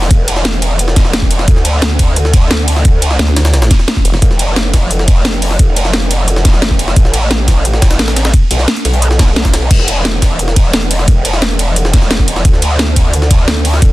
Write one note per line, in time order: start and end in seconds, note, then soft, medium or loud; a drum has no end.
0.02 snare soft
0.11 1.46 E1 loud
0.11 kick loud
0.11 closed hi-hat medium
0.28 closed hi-hat medium
0.28 closed hi-hat loud
0.28 ride medium
0.36 snare soft
0.45 snare loud
0.45 closed hi-hat medium
0.54 closed hi-hat soft
0.62 closed hi-hat medium
0.62 closed hi-hat loud
0.62 ride medium
0.79 closed hi-hat medium
0.88 snare medium
0.96 kick loud
0.96 snare soft
0.96 closed hi-hat loud
0.96 closed hi-hat medium
0.96 ride medium
1.05 snare soft
1.13 snare loud
1.13 closed hi-hat medium
1.22 kick medium
1.22 snare soft
1.31 closed hi-hat loud
1.31 closed hi-hat medium
1.31 ride medium
1.39 snare medium
1.48 2.84 D2 loud
1.48 kick loud
1.48 closed hi-hat medium
1.56 snare soft
1.65 closed hi-hat loud
1.65 closed hi-hat medium
1.65 ride medium
1.82 snare loud
1.82 closed hi-hat medium
1.99 kick medium
1.99 closed hi-hat medium
1.99 closed hi-hat loud
1.99 ride medium
2.16 closed hi-hat medium
2.25 snare soft
2.34 kick loud
2.34 closed hi-hat loud
2.34 closed hi-hat medium
2.34 ride medium
2.51 snare loud
2.51 closed hi-hat medium
2.59 closed hi-hat soft
2.68 closed hi-hat medium
2.68 open hi-hat medium
2.68 ride medium
2.76 snare soft
2.85 3.18 D2 loud
2.85 kick loud
2.85 closed hi-hat medium
3.02 closed hi-hat loud
3.02 closed hi-hat medium
3.02 ride medium
3.11 snare soft
3.19 3.69 D2 loud
3.19 snare loud
3.19 closed hi-hat medium
3.28 closed hi-hat soft
3.36 snare loud
3.36 closed hi-hat medium
3.36 ride medium
3.45 snare loud
3.45 closed hi-hat medium
3.54 snare loud
3.54 closed hi-hat medium
3.62 snare loud
3.62 closed hi-hat medium
3.71 kick loud
3.71 snare soft
3.71 closed hi-hat medium
3.71 ride medium
3.79 snare soft
3.88 snare loud
3.88 closed hi-hat medium
3.96 kick medium
3.96 snare soft
4.05 4.21 F1 loud
4.05 closed hi-hat loud
4.05 closed hi-hat medium
4.05 ride medium
4.14 snare medium
4.22 5.58 F1 loud
4.22 kick loud
4.22 closed hi-hat medium
4.31 snare soft
4.39 closed hi-hat medium
4.39 ride medium
4.56 snare loud
4.56 closed hi-hat medium
4.74 kick medium
4.74 snare medium
4.74 closed hi-hat medium
4.74 ride medium
4.91 closed hi-hat medium
4.99 snare soft
5.08 kick loud
5.08 closed hi-hat medium
5.08 ride medium
5.25 snare loud
5.25 closed hi-hat medium
5.34 closed hi-hat soft
5.42 closed hi-hat medium
5.42 open hi-hat medium
5.42 ride medium
5.51 snare soft
5.59 6.95 F1 loud
5.59 kick loud
5.59 closed hi-hat medium
5.76 closed hi-hat medium
5.76 ride medium
5.85 snare soft
5.93 snare loud
5.93 closed hi-hat medium
6.02 closed hi-hat soft
6.11 closed hi-hat medium
6.11 ride medium
6.28 closed hi-hat medium
6.36 snare medium
6.45 kick loud
6.45 snare soft
6.45 closed hi-hat medium
6.45 ride medium
6.54 snare soft
6.62 snare loud
6.62 closed hi-hat medium
6.71 kick medium
6.71 snare soft
6.79 closed hi-hat medium
6.79 ride medium
6.88 snare medium
6.96 8.32 A1 loud
6.96 kick loud
6.96 closed hi-hat medium
7.05 snare soft
7.14 closed hi-hat medium
7.14 ride medium
7.31 snare loud
7.31 closed hi-hat medium
7.48 kick medium
7.48 snare medium
7.48 closed hi-hat medium
7.48 ride medium
7.65 closed hi-hat medium
7.74 snare soft
7.82 kick loud
7.82 snare loud
7.82 closed hi-hat medium
7.82 ride medium
7.91 snare loud
7.91 closed hi-hat medium
7.99 snare loud
7.99 closed hi-hat medium
8.08 snare loud
8.08 closed hi-hat medium
8.16 snare loud
8.16 closed hi-hat medium
8.16 ride medium
8.25 snare loud
8.25 closed hi-hat medium
8.34 kick loud
8.34 closed hi-hat medium
8.51 8.66 B1 medium
8.51 closed hi-hat medium
8.51 closed hi-hat loud
8.51 ride medium
8.59 snare soft
8.68 snare loud
8.68 closed hi-hat medium
8.76 closed hi-hat medium
8.85 9.69 B1 medium
8.85 snare soft
8.85 closed hi-hat medium
8.85 ride medium
8.94 closed hi-hat medium
9.02 closed hi-hat medium
9.11 snare medium
9.19 kick loud
9.19 snare soft
9.19 snare loud
9.19 closed hi-hat medium
9.19 ride medium
9.36 snare loud
9.36 closed hi-hat medium
9.45 kick medium
9.45 snare loud
9.45 closed hi-hat medium
9.54 snare loud
9.54 closed hi-hat medium
9.54 closed hi-hat loud
9.54 ride medium
9.71 11.06 E1 loud
9.71 kick loud
9.71 closed hi-hat medium
9.71 crash medium
9.79 snare soft
9.88 closed hi-hat medium
9.88 closed hi-hat loud
9.88 ride medium
10.05 snare loud
10.05 closed hi-hat medium
10.22 kick medium
10.22 snare medium
10.22 closed hi-hat medium
10.22 closed hi-hat loud
10.22 ride medium
10.39 closed hi-hat medium
10.48 snare soft
10.56 kick loud
10.56 closed hi-hat medium
10.56 closed hi-hat loud
10.56 ride medium
10.73 snare loud
10.73 closed hi-hat medium
10.82 closed hi-hat soft
10.91 closed hi-hat loud
10.91 open hi-hat medium
10.91 ride medium
10.99 snare soft
11.08 12.44 E1 loud
11.08 kick loud
11.08 closed hi-hat medium
11.25 closed hi-hat medium
11.25 closed hi-hat loud
11.25 ride medium
11.33 snare soft
11.42 snare loud
11.42 closed hi-hat medium
11.51 closed hi-hat soft
11.59 closed hi-hat medium
11.59 closed hi-hat loud
11.59 ride medium
11.76 closed hi-hat medium
11.85 snare medium
11.93 kick loud
11.93 snare soft
11.93 closed hi-hat medium
11.93 closed hi-hat loud
11.93 ride medium
12.02 snare medium
12.11 snare loud
12.11 closed hi-hat medium
12.19 kick medium
12.19 snare soft
12.28 closed hi-hat medium
12.28 ride medium
12.36 snare medium
12.45 13.81 D2 loud
12.45 kick loud
12.45 closed hi-hat medium
12.54 snare soft
12.62 closed hi-hat medium
12.62 ride medium
12.79 snare loud
12.79 closed hi-hat medium
12.96 kick medium
12.96 closed hi-hat loud
12.96 closed hi-hat medium
12.96 ride medium
13.13 closed hi-hat medium
13.22 snare soft
13.31 kick loud
13.31 closed hi-hat medium
13.31 ride medium
13.48 snare loud
13.48 closed hi-hat medium
13.56 closed hi-hat soft
13.65 closed hi-hat loud
13.65 open hi-hat medium
13.65 ride medium
13.74 snare soft
13.82 13.93 D2 loud
13.82 kick loud
13.82 closed hi-hat medium